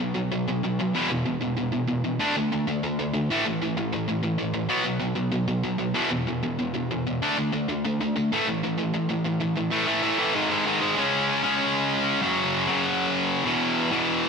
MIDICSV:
0, 0, Header, 1, 2, 480
1, 0, Start_track
1, 0, Tempo, 313643
1, 1449, Time_signature, 4, 2, 24, 8
1, 13449, Tempo, 310720
1, 21947, End_track
2, 0, Start_track
2, 0, Title_t, "Distorted electric guitar"
2, 0, Program_c, 0, 30
2, 0, Note_on_c, 0, 47, 77
2, 0, Note_on_c, 0, 54, 92
2, 208, Note_off_c, 0, 47, 0
2, 212, Note_off_c, 0, 54, 0
2, 226, Note_on_c, 0, 47, 81
2, 230, Note_on_c, 0, 54, 84
2, 454, Note_off_c, 0, 47, 0
2, 456, Note_off_c, 0, 54, 0
2, 483, Note_on_c, 0, 47, 79
2, 484, Note_on_c, 0, 54, 91
2, 702, Note_off_c, 0, 47, 0
2, 703, Note_off_c, 0, 54, 0
2, 730, Note_on_c, 0, 47, 72
2, 736, Note_on_c, 0, 54, 83
2, 945, Note_off_c, 0, 47, 0
2, 949, Note_off_c, 0, 54, 0
2, 969, Note_on_c, 0, 47, 82
2, 979, Note_on_c, 0, 54, 85
2, 1185, Note_off_c, 0, 47, 0
2, 1190, Note_off_c, 0, 54, 0
2, 1210, Note_on_c, 0, 47, 73
2, 1224, Note_on_c, 0, 54, 79
2, 1426, Note_off_c, 0, 47, 0
2, 1433, Note_off_c, 0, 54, 0
2, 1440, Note_on_c, 0, 40, 74
2, 1447, Note_on_c, 0, 47, 98
2, 1459, Note_on_c, 0, 52, 94
2, 1671, Note_off_c, 0, 40, 0
2, 1674, Note_off_c, 0, 47, 0
2, 1680, Note_off_c, 0, 52, 0
2, 1686, Note_on_c, 0, 40, 79
2, 1696, Note_on_c, 0, 47, 93
2, 1904, Note_off_c, 0, 40, 0
2, 1909, Note_off_c, 0, 47, 0
2, 1929, Note_on_c, 0, 40, 73
2, 1934, Note_on_c, 0, 47, 80
2, 2145, Note_off_c, 0, 40, 0
2, 2148, Note_off_c, 0, 47, 0
2, 2169, Note_on_c, 0, 40, 80
2, 2175, Note_on_c, 0, 47, 89
2, 2385, Note_off_c, 0, 40, 0
2, 2388, Note_off_c, 0, 47, 0
2, 2413, Note_on_c, 0, 40, 83
2, 2419, Note_on_c, 0, 47, 97
2, 2628, Note_off_c, 0, 40, 0
2, 2631, Note_off_c, 0, 47, 0
2, 2646, Note_on_c, 0, 40, 74
2, 2651, Note_on_c, 0, 47, 80
2, 2864, Note_off_c, 0, 40, 0
2, 2866, Note_off_c, 0, 47, 0
2, 2882, Note_on_c, 0, 40, 76
2, 2884, Note_on_c, 0, 47, 90
2, 3102, Note_off_c, 0, 40, 0
2, 3103, Note_off_c, 0, 47, 0
2, 3133, Note_on_c, 0, 40, 70
2, 3139, Note_on_c, 0, 47, 75
2, 3348, Note_off_c, 0, 40, 0
2, 3351, Note_off_c, 0, 47, 0
2, 3364, Note_on_c, 0, 50, 86
2, 3371, Note_on_c, 0, 57, 102
2, 3384, Note_on_c, 0, 62, 103
2, 3588, Note_off_c, 0, 50, 0
2, 3596, Note_off_c, 0, 57, 0
2, 3603, Note_off_c, 0, 62, 0
2, 3606, Note_on_c, 0, 50, 75
2, 3613, Note_on_c, 0, 57, 97
2, 3824, Note_off_c, 0, 50, 0
2, 3828, Note_off_c, 0, 57, 0
2, 3860, Note_on_c, 0, 57, 86
2, 3866, Note_on_c, 0, 50, 78
2, 4070, Note_off_c, 0, 50, 0
2, 4071, Note_off_c, 0, 57, 0
2, 4089, Note_on_c, 0, 50, 80
2, 4098, Note_on_c, 0, 57, 86
2, 4306, Note_off_c, 0, 50, 0
2, 4311, Note_off_c, 0, 57, 0
2, 4334, Note_on_c, 0, 50, 81
2, 4341, Note_on_c, 0, 57, 86
2, 4549, Note_off_c, 0, 50, 0
2, 4552, Note_off_c, 0, 57, 0
2, 4575, Note_on_c, 0, 50, 67
2, 4582, Note_on_c, 0, 57, 78
2, 4780, Note_off_c, 0, 50, 0
2, 4787, Note_off_c, 0, 57, 0
2, 4799, Note_on_c, 0, 50, 79
2, 4806, Note_on_c, 0, 57, 79
2, 5021, Note_off_c, 0, 50, 0
2, 5025, Note_off_c, 0, 57, 0
2, 5058, Note_on_c, 0, 45, 98
2, 5064, Note_on_c, 0, 52, 90
2, 5071, Note_on_c, 0, 57, 104
2, 5275, Note_off_c, 0, 45, 0
2, 5278, Note_off_c, 0, 52, 0
2, 5287, Note_off_c, 0, 57, 0
2, 5293, Note_on_c, 0, 45, 69
2, 5297, Note_on_c, 0, 52, 88
2, 5508, Note_off_c, 0, 45, 0
2, 5510, Note_off_c, 0, 52, 0
2, 5540, Note_on_c, 0, 45, 79
2, 5544, Note_on_c, 0, 52, 90
2, 5752, Note_off_c, 0, 45, 0
2, 5754, Note_off_c, 0, 52, 0
2, 5773, Note_on_c, 0, 45, 72
2, 5776, Note_on_c, 0, 52, 81
2, 5989, Note_off_c, 0, 45, 0
2, 5990, Note_off_c, 0, 52, 0
2, 6011, Note_on_c, 0, 45, 80
2, 6018, Note_on_c, 0, 52, 84
2, 6228, Note_off_c, 0, 45, 0
2, 6231, Note_off_c, 0, 52, 0
2, 6243, Note_on_c, 0, 45, 79
2, 6255, Note_on_c, 0, 52, 85
2, 6451, Note_off_c, 0, 45, 0
2, 6459, Note_off_c, 0, 52, 0
2, 6470, Note_on_c, 0, 45, 73
2, 6477, Note_on_c, 0, 52, 77
2, 6687, Note_off_c, 0, 45, 0
2, 6696, Note_off_c, 0, 52, 0
2, 6705, Note_on_c, 0, 45, 78
2, 6715, Note_on_c, 0, 52, 82
2, 6923, Note_off_c, 0, 45, 0
2, 6925, Note_off_c, 0, 52, 0
2, 6941, Note_on_c, 0, 45, 74
2, 6944, Note_on_c, 0, 52, 83
2, 7167, Note_off_c, 0, 45, 0
2, 7174, Note_off_c, 0, 52, 0
2, 7174, Note_on_c, 0, 47, 82
2, 7182, Note_on_c, 0, 54, 94
2, 7185, Note_on_c, 0, 59, 101
2, 7395, Note_off_c, 0, 47, 0
2, 7408, Note_off_c, 0, 54, 0
2, 7413, Note_on_c, 0, 47, 80
2, 7425, Note_off_c, 0, 59, 0
2, 7426, Note_on_c, 0, 54, 86
2, 7626, Note_off_c, 0, 47, 0
2, 7634, Note_off_c, 0, 54, 0
2, 7644, Note_on_c, 0, 47, 82
2, 7652, Note_on_c, 0, 54, 86
2, 7868, Note_off_c, 0, 47, 0
2, 7868, Note_off_c, 0, 54, 0
2, 7886, Note_on_c, 0, 47, 81
2, 7887, Note_on_c, 0, 54, 83
2, 8117, Note_off_c, 0, 47, 0
2, 8126, Note_off_c, 0, 54, 0
2, 8136, Note_on_c, 0, 47, 87
2, 8143, Note_on_c, 0, 54, 91
2, 8364, Note_off_c, 0, 47, 0
2, 8367, Note_off_c, 0, 54, 0
2, 8382, Note_on_c, 0, 47, 71
2, 8385, Note_on_c, 0, 54, 74
2, 8606, Note_off_c, 0, 47, 0
2, 8610, Note_off_c, 0, 54, 0
2, 8625, Note_on_c, 0, 47, 81
2, 8628, Note_on_c, 0, 54, 87
2, 8834, Note_off_c, 0, 47, 0
2, 8841, Note_off_c, 0, 54, 0
2, 8852, Note_on_c, 0, 47, 80
2, 8860, Note_on_c, 0, 54, 82
2, 9082, Note_off_c, 0, 47, 0
2, 9093, Note_off_c, 0, 54, 0
2, 9097, Note_on_c, 0, 40, 88
2, 9100, Note_on_c, 0, 47, 89
2, 9111, Note_on_c, 0, 52, 97
2, 9332, Note_off_c, 0, 47, 0
2, 9334, Note_off_c, 0, 40, 0
2, 9348, Note_off_c, 0, 52, 0
2, 9350, Note_on_c, 0, 47, 93
2, 9352, Note_on_c, 0, 40, 73
2, 9578, Note_off_c, 0, 47, 0
2, 9579, Note_off_c, 0, 40, 0
2, 9596, Note_on_c, 0, 40, 79
2, 9611, Note_on_c, 0, 47, 90
2, 9820, Note_off_c, 0, 47, 0
2, 9821, Note_off_c, 0, 40, 0
2, 9836, Note_on_c, 0, 40, 80
2, 9838, Note_on_c, 0, 47, 97
2, 10061, Note_off_c, 0, 40, 0
2, 10062, Note_off_c, 0, 47, 0
2, 10081, Note_on_c, 0, 40, 78
2, 10088, Note_on_c, 0, 47, 80
2, 10294, Note_off_c, 0, 40, 0
2, 10303, Note_off_c, 0, 47, 0
2, 10312, Note_on_c, 0, 40, 72
2, 10321, Note_on_c, 0, 47, 84
2, 10538, Note_off_c, 0, 40, 0
2, 10543, Note_off_c, 0, 47, 0
2, 10572, Note_on_c, 0, 40, 75
2, 10575, Note_on_c, 0, 47, 91
2, 10788, Note_off_c, 0, 40, 0
2, 10790, Note_off_c, 0, 47, 0
2, 10815, Note_on_c, 0, 40, 77
2, 10822, Note_on_c, 0, 47, 82
2, 11030, Note_off_c, 0, 40, 0
2, 11033, Note_off_c, 0, 47, 0
2, 11050, Note_on_c, 0, 50, 96
2, 11057, Note_on_c, 0, 62, 106
2, 11059, Note_on_c, 0, 57, 94
2, 11269, Note_off_c, 0, 57, 0
2, 11271, Note_off_c, 0, 50, 0
2, 11280, Note_off_c, 0, 62, 0
2, 11287, Note_on_c, 0, 57, 92
2, 11289, Note_on_c, 0, 50, 78
2, 11496, Note_off_c, 0, 50, 0
2, 11505, Note_off_c, 0, 57, 0
2, 11515, Note_on_c, 0, 50, 71
2, 11527, Note_on_c, 0, 57, 96
2, 11739, Note_off_c, 0, 50, 0
2, 11745, Note_off_c, 0, 57, 0
2, 11759, Note_on_c, 0, 50, 80
2, 11770, Note_on_c, 0, 57, 82
2, 11981, Note_off_c, 0, 50, 0
2, 11986, Note_off_c, 0, 57, 0
2, 12006, Note_on_c, 0, 50, 85
2, 12008, Note_on_c, 0, 57, 88
2, 12224, Note_off_c, 0, 50, 0
2, 12225, Note_off_c, 0, 57, 0
2, 12250, Note_on_c, 0, 50, 71
2, 12259, Note_on_c, 0, 57, 83
2, 12466, Note_off_c, 0, 50, 0
2, 12470, Note_off_c, 0, 57, 0
2, 12485, Note_on_c, 0, 50, 78
2, 12494, Note_on_c, 0, 57, 96
2, 12703, Note_off_c, 0, 50, 0
2, 12707, Note_off_c, 0, 57, 0
2, 12738, Note_on_c, 0, 45, 91
2, 12746, Note_on_c, 0, 52, 94
2, 12756, Note_on_c, 0, 57, 102
2, 12954, Note_off_c, 0, 45, 0
2, 12955, Note_off_c, 0, 52, 0
2, 12968, Note_off_c, 0, 57, 0
2, 12972, Note_on_c, 0, 45, 75
2, 12974, Note_on_c, 0, 52, 90
2, 13186, Note_off_c, 0, 45, 0
2, 13187, Note_off_c, 0, 52, 0
2, 13217, Note_on_c, 0, 45, 79
2, 13224, Note_on_c, 0, 52, 93
2, 13419, Note_off_c, 0, 45, 0
2, 13425, Note_off_c, 0, 52, 0
2, 13438, Note_on_c, 0, 45, 80
2, 13443, Note_on_c, 0, 52, 84
2, 13660, Note_off_c, 0, 45, 0
2, 13663, Note_off_c, 0, 52, 0
2, 13686, Note_on_c, 0, 45, 91
2, 13689, Note_on_c, 0, 52, 99
2, 13905, Note_off_c, 0, 45, 0
2, 13906, Note_off_c, 0, 52, 0
2, 13923, Note_on_c, 0, 45, 95
2, 13930, Note_on_c, 0, 52, 93
2, 14143, Note_off_c, 0, 45, 0
2, 14147, Note_off_c, 0, 52, 0
2, 14163, Note_on_c, 0, 45, 74
2, 14175, Note_on_c, 0, 52, 83
2, 14384, Note_off_c, 0, 45, 0
2, 14390, Note_off_c, 0, 52, 0
2, 14403, Note_on_c, 0, 45, 78
2, 14410, Note_on_c, 0, 52, 97
2, 14625, Note_off_c, 0, 45, 0
2, 14628, Note_off_c, 0, 52, 0
2, 14646, Note_on_c, 0, 45, 83
2, 14657, Note_on_c, 0, 52, 87
2, 14858, Note_off_c, 0, 45, 0
2, 14872, Note_off_c, 0, 52, 0
2, 14877, Note_on_c, 0, 45, 92
2, 14892, Note_on_c, 0, 52, 82
2, 14892, Note_on_c, 0, 57, 108
2, 15108, Note_off_c, 0, 57, 0
2, 15115, Note_off_c, 0, 52, 0
2, 15124, Note_off_c, 0, 45, 0
2, 15127, Note_on_c, 0, 57, 105
2, 15134, Note_on_c, 0, 52, 97
2, 15142, Note_on_c, 0, 45, 86
2, 15348, Note_off_c, 0, 45, 0
2, 15353, Note_off_c, 0, 52, 0
2, 15365, Note_off_c, 0, 57, 0
2, 15366, Note_on_c, 0, 45, 95
2, 15372, Note_on_c, 0, 52, 111
2, 15384, Note_on_c, 0, 57, 106
2, 15594, Note_off_c, 0, 57, 0
2, 15602, Note_off_c, 0, 52, 0
2, 15604, Note_off_c, 0, 45, 0
2, 15612, Note_on_c, 0, 57, 107
2, 15620, Note_on_c, 0, 52, 95
2, 15623, Note_on_c, 0, 45, 79
2, 15841, Note_off_c, 0, 57, 0
2, 15845, Note_off_c, 0, 52, 0
2, 15846, Note_off_c, 0, 45, 0
2, 15857, Note_on_c, 0, 44, 101
2, 15861, Note_on_c, 0, 51, 114
2, 15873, Note_on_c, 0, 56, 106
2, 16076, Note_off_c, 0, 56, 0
2, 16090, Note_off_c, 0, 44, 0
2, 16092, Note_off_c, 0, 51, 0
2, 16095, Note_on_c, 0, 56, 92
2, 16109, Note_on_c, 0, 44, 85
2, 16110, Note_on_c, 0, 51, 95
2, 16322, Note_off_c, 0, 44, 0
2, 16333, Note_off_c, 0, 51, 0
2, 16335, Note_off_c, 0, 56, 0
2, 16341, Note_on_c, 0, 44, 102
2, 16352, Note_on_c, 0, 51, 102
2, 16354, Note_on_c, 0, 56, 113
2, 16557, Note_off_c, 0, 56, 0
2, 16562, Note_off_c, 0, 51, 0
2, 16575, Note_off_c, 0, 44, 0
2, 16576, Note_on_c, 0, 56, 106
2, 16581, Note_on_c, 0, 51, 81
2, 16594, Note_on_c, 0, 44, 73
2, 16803, Note_off_c, 0, 51, 0
2, 16803, Note_off_c, 0, 56, 0
2, 16810, Note_on_c, 0, 49, 95
2, 16812, Note_off_c, 0, 44, 0
2, 16835, Note_on_c, 0, 56, 100
2, 16858, Note_on_c, 0, 61, 110
2, 17520, Note_off_c, 0, 49, 0
2, 17527, Note_off_c, 0, 61, 0
2, 17533, Note_off_c, 0, 56, 0
2, 17533, Note_on_c, 0, 61, 108
2, 17560, Note_on_c, 0, 56, 91
2, 17569, Note_on_c, 0, 49, 81
2, 18720, Note_off_c, 0, 61, 0
2, 18734, Note_off_c, 0, 56, 0
2, 18738, Note_on_c, 0, 42, 98
2, 18739, Note_off_c, 0, 49, 0
2, 18756, Note_on_c, 0, 49, 86
2, 18776, Note_on_c, 0, 54, 115
2, 19431, Note_off_c, 0, 54, 0
2, 19442, Note_off_c, 0, 42, 0
2, 19449, Note_on_c, 0, 54, 97
2, 19451, Note_off_c, 0, 49, 0
2, 19473, Note_on_c, 0, 49, 95
2, 19492, Note_on_c, 0, 42, 86
2, 20626, Note_off_c, 0, 42, 0
2, 20632, Note_on_c, 0, 40, 95
2, 20634, Note_off_c, 0, 54, 0
2, 20646, Note_off_c, 0, 49, 0
2, 20657, Note_on_c, 0, 47, 100
2, 20674, Note_on_c, 0, 52, 100
2, 21354, Note_off_c, 0, 52, 0
2, 21357, Note_off_c, 0, 47, 0
2, 21360, Note_on_c, 0, 52, 95
2, 21380, Note_on_c, 0, 47, 102
2, 21387, Note_off_c, 0, 40, 0
2, 21393, Note_on_c, 0, 40, 82
2, 21947, Note_off_c, 0, 40, 0
2, 21947, Note_off_c, 0, 47, 0
2, 21947, Note_off_c, 0, 52, 0
2, 21947, End_track
0, 0, End_of_file